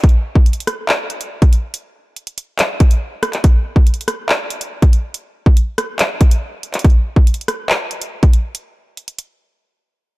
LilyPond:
\new DrumStaff \with { instrumentName = "Drums" } \drummode { \time 4/4 \tempo 4 = 141 <hh bd>32 hh8 r32 bd16 \tuplet 3/2 { hh16 hh16 hh16 <hh ss>16 r16 r16 } hc8 hh16 hh16 r16 <hh bd>16 hh8 | hh4 hh16 hh16 hh8 <hc hh>8 <hh bd>16 hh16 r8 <hh ss>16 <hc hh>16 | <hh bd>8. bd16 \tuplet 3/2 { hh16 hh16 hh16 <hh ss>16 r16 r16 } hc8 hh16 hh16 r16 <hh bd>16 hh8 | hh8. bd16 hh8 <hh ss>8 <hc hh>8 <hh bd>16 hh16 r8 hh16 <hc hh>32 hh32 |
<hh bd>32 hh8 r32 bd16 \tuplet 3/2 { hh16 hh16 hh16 <hh ss>16 r16 r16 } hc8 hh16 hh16 r16 <hh bd>16 hh8 | hh4 hh16 hh16 hh8 r4 r4 | }